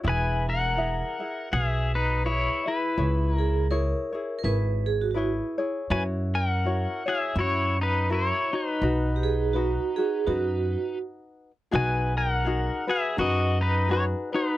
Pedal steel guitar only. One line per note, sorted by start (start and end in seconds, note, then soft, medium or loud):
0.08 0.46 B4 medium
0.08 0.49 G#5 loud
0.49 1.48 A#4 medium
0.49 1.55 F#5 medium
1.53 1.92 G#4 medium
1.53 1.95 E5 medium
1.95 2.23 D#4 medium
1.95 2.26 B4 medium
2.26 2.65 E4 medium
2.26 2.69 C#5 medium
2.67 3.67 E4 medium
2.67 3.34 B4 medium
3.34 3.67 A#4 medium
5.91 6.02 B4 medium
5.91 6.03 G#5 loud
6.35 7.02 A#4 medium
6.35 7.09 F#5 loud
7.08 7.35 G#4 medium
7.08 7.39 E5 medium
7.39 7.77 E4 medium
7.39 7.81 C#5 medium
7.81 8.08 D#4 medium
7.81 8.09 B4 medium
8.12 8.50 E4 medium
8.12 8.55 C#5 medium
8.53 10.97 D#4 medium
8.53 10.98 B4 medium
11.75 12.13 B4 medium
11.75 12.17 G#5 loud
12.17 12.85 A#4 medium
12.17 12.91 F#5 loud
12.89 13.17 G#4 medium
12.89 13.19 E5 medium
13.19 13.58 F#4 medium
13.19 13.63 D#5 medium
13.61 13.89 D#4 medium
13.61 13.93 B4 medium
13.91 14.02 F#4 medium
13.91 14.04 C#5 medium
14.34 14.57 D#4 medium
14.34 14.57 B4 medium